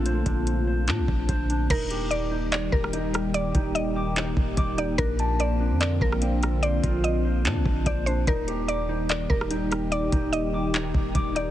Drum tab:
CC |----------------|x---------------|----------------|----------------|
HH |x-x-x---x---x-x-|x-x-x---x---x-x-|x-x-x---x---x-x-|x-x-x---x---x-x-|
CP |--------x-------|--------x-------|--------x-------|--------x-------|
SD |----------------|-----------r--r-|----------------|-----------r--r-|
BD |--o-------o-o---|o---------o-----|--o-------o-o---|o---------o-----|

CC |----------------|----------------|----------------|
HH |x-x-x---x---x-x-|x-x-x---x---x-x-|x-x-x---x---x-x-|
CP |--------x-------|--------x-------|--------x-------|
SD |----------------|-----------r--r-|----------------|
BD |--o-------o-o---|o---------o-----|--o-------o-o---|